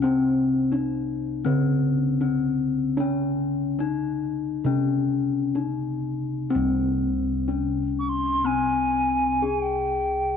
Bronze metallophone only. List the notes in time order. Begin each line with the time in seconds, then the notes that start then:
0.02 C4
0.72 D#4
1.45 C4
2.21 C4
3.00 C#4
3.80 D#4
4.66 C#4
5.56 D#4
6.50 C4
7.48 C#4
8.44 C4
9.42 G#4